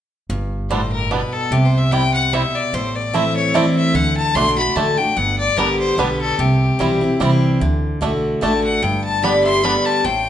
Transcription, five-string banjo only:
0.71 0.80 G3 medium
0.71 0.80 B3 medium
0.71 0.80 D4 medium
1.11 1.21 G3 medium
1.11 1.21 B3 medium
1.11 1.21 D4 medium
1.93 2.02 G3 medium
1.93 2.02 C4 medium
1.93 2.02 E4 medium
2.33 2.43 G3 medium
2.33 2.43 C4 medium
2.33 2.43 E4 medium
3.14 3.24 A3 medium
3.14 3.24 C4 medium
3.14 3.24 E4 medium
3.55 3.64 A3 medium
3.55 3.64 C4 medium
3.55 3.64 E4 medium
4.36 4.46 A3 medium
4.36 4.39 D4 medium
4.77 4.86 A3 medium
4.77 4.79 D4 medium
5.58 5.68 G3 medium
5.58 5.68 B3 medium
5.58 5.68 D4 medium
5.99 6.08 G3 medium
5.99 6.08 B3 medium
5.99 6.08 D4 medium
6.80 6.90 G3 medium
6.80 6.90 C4 medium
6.80 6.90 E4 medium
7.20 7.30 G3 medium
7.20 7.30 C4 medium
7.20 7.30 E4 medium
8.02 8.11 A3 medium
8.02 8.04 D4 medium
8.43 8.52 A3 medium
8.43 8.45 D4 medium
9.24 9.33 G3 medium
9.24 9.34 B3 medium
9.24 9.34 D4 medium
9.65 9.74 G3 medium
9.65 9.74 B3 medium
9.65 9.74 D4 medium

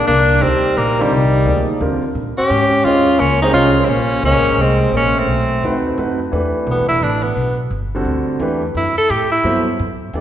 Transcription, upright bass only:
0.08 0.41 C2 medium
0.42 0.76 D2 medium
0.77 1.10 A#1 medium
1.12 1.45 C2 medium
1.46 1.80 D2 medium
1.81 2.14 D#2 medium
2.15 2.36 A#2 medium
2.39 muted upright bass stroke soft
2.50 2.84 G#2 medium
2.85 3.19 D#2 medium
3.20 3.53 C#2 medium
3.53 3.88 C2 medium
3.88 4.22 A#1 medium
4.23 4.35 C#2 medium
4.35 4.46 A#1 medium
4.46 4.56 G#1 medium
4.57 4.91 C2 medium
4.92 5.26 A#1 medium
5.27 5.61 B1 medium
5.62 5.96 D#2 medium
5.98 6.31 F#2 medium
6.32 6.66 E2 medium
6.67 6.80 B1 medium
6.79 6.90 G1 medium
6.91 7.01 E1 medium
7.02 7.35 A1 medium
7.36 7.70 B1 medium
7.70 8.04 G1 medium
8.05 8.39 D2 medium
8.40 8.74 E2 medium
8.75 8.96 F#2 medium
8.98 muted upright bass stroke soft
9.10 9.43 A2 medium
9.44 9.78 G2 medium
9.79 10.13 F#2 medium
10.13 10.21 E2 medium

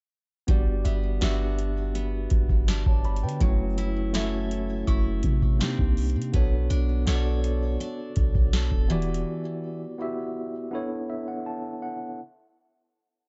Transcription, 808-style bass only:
0.49 0.84 G1 loud
0.85 1.20 G1 loud
1.22 2.27 G1 loud
2.31 2.84 G1 loud
2.86 3.25 G1 loud
3.23 3.40 D3 loud
3.41 4.83 F#1 loud
4.88 5.23 F#1 loud
5.24 5.77 C3 loud
5.79 6.17 C2 loud
6.16 6.33 C3 loud
6.34 6.69 B1 loud
6.70 7.05 B1 loud
7.07 7.77 B1 loud
8.17 8.34 B1 loud
8.35 8.70 B1 loud
8.72 9.24 E1 loud

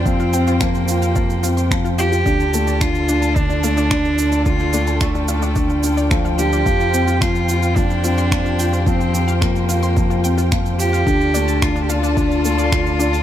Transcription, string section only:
0.00 2.22 F4 medium
0.00 2.22 G4 medium
0.00 2.22 C5 medium
0.00 2.22 G5 medium
2.25 11.03 F4 medium
2.25 6.62 A4 medium
2.25 6.62 D5 medium
2.25 4.44 A5 medium
4.45 11.02 G5 medium
6.67 11.03 G4 medium
6.67 11.03 C5 medium
11.06 13.23 F4 medium
11.06 13.23 A4 medium
11.06 13.23 D5 medium
11.06 13.23 A5 medium

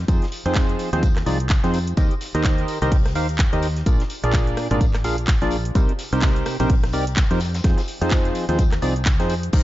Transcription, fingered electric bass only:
0.08 0.18 F2 loud
0.46 0.74 F2 loud
0.93 1.22 D#2 loud
1.26 1.57 C2 loud
1.64 1.93 F2 medium
1.97 2.07 D#2 loud
2.35 2.63 D#2 loud
2.82 3.15 C2 loud
3.15 3.46 D#2 loud
3.53 3.82 D#2 medium
3.86 3.96 A#1 loud
4.24 4.52 A#1 loud
4.71 5.04 G#1 loud
5.04 5.35 A#1 loud
5.42 5.71 A#1 medium
5.75 5.85 C2 loud
6.13 6.41 C2 loud
6.60 6.93 A#1 loud
6.93 7.24 C2 loud
7.31 7.60 F2 medium
7.64 7.74 F2 loud
8.02 8.30 F2 loud
8.49 8.78 D#2 loud
8.82 9.20 C2 medium
9.20 9.49 F2 medium
9.53 9.63 D#2 loud

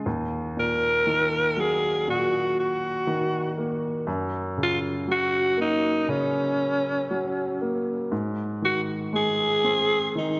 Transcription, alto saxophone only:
0.60 1.61 A#4 medium
1.60 2.09 G#4 medium
2.10 2.55 F#4 medium
2.59 3.54 F#4 medium
4.63 4.79 F4 medium
5.12 5.57 F#4 medium
5.61 6.11 D#4 medium
6.10 7.61 C#4 medium
8.65 8.81 F#4 medium
9.16 10.12 G#4 medium
10.18 10.40 D#4 medium

